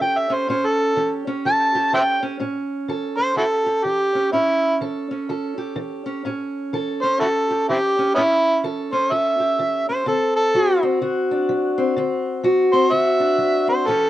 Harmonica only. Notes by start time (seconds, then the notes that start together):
0.02 G5
0.18 E5
0.34 C5
0.50 C5
0.66 A4
1.47 A5
1.94 C5 E5 G5
3.17 C5
3.37 E4 F#4 A4
3.84 G4
4.32 E4
7.02 C5
7.20 E4 F#4 A4
7.69 C4 E4 G4
8.15 B3 C#4 E4
8.93 C5
9.13 E5
9.89 C5
10.08 A4
10.36 A4
12.73 C5
12.93 E5
13.69 C5
13.88 A4